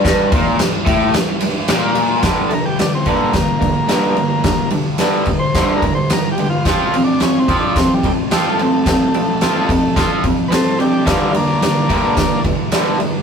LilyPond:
<<
  \new Staff \with { instrumentName = "Transistor combo organ" } { \time 4/4 \key g \minor \tempo 4 = 109 r1 | r8 <a' bes'>16 g'16 d'16 c'16 bes2~ bes8~ | bes8 r8 \tuplet 3/2 { r4 c''8~ c''8 bes'8 c''8 bes'8 g'8 f'8 } | \tuplet 3/2 { g'8 f'8 d'8 cis'8 c'8 d'8 c'8 g8 r8 g8 a4~ } |
a2~ a16 r8. <a' b' c''>8 <d' g'>8 | <d' f'>8 <bes d'>2 r4. | }
  \new Staff \with { instrumentName = "Overdriven electric guitar" } { \clef bass \time 4/4 \key g \minor g,8 bes,8 g,8 a,8 r8 g,8 bes,4 | <g, d g>8 <g, d>8 <g, d>8 <g, d g>8 <g, d>8 <g, d>8 <g, d g>8 <g, d>8 | <g, d>8 <g, d>8 <g, d g>8 <g, d>8 <g, d g>8 <g, d>8 <g, d>8 <g, d>8 | <f c' f'>8 <f c'>8 <f c'>8 <f c' f'>8 <f c'>8 <f c'>8 <f c' f'>8 <f c'>8 |
<f c'>8 <f c'>8 <f c' f'>8 <f c'>8 <f c' f'>8 <f c'>8 <f c'>8 <f c'>8 | <g, d g>8 <g, d>8 <g, d>8 <g, d g>8 <g, d>8 <g, d>8 <g, d g>8 <g, d>8 | }
  \new DrumStaff \with { instrumentName = "Drums" } \drummode { \time 4/4 <bd cymr sn>8 <bd cymr>8 <cymr sn>8 <bd cymr>8 <cymr sn>8 cymr8 <cymr sn>8 cymr8 | <bd cymr sn>8 cymr8 <cymr sn>8 <bd cymr>8 <bd cymr sn>8 <bd cymr>8 <cymr sn>8 cymr8 | <bd cymr sn>8 cymr8 <cymr sn>8 <bd cymr>8 <bd cymr sn>8 <bd cymr>8 <cymr sn>8 cymr8 | <bd cymr sn>8 cymr8 <cymr sn>8 <bd cymr>8 <bd cymr sn>8 <bd cymr>8 <cymr sn>8 cymr8 |
<bd cymr sn>8 cymr8 <cymr sn>8 <bd cymr>8 <bd cymr sn>8 <bd cymr>8 <cymr sn>8 cymr8 | <bd cymr sn>8 cymr8 <cymr sn>8 <bd cymr>8 <bd cymr sn>8 <bd cymr>8 <cymr sn>8 cymr8 | }
>>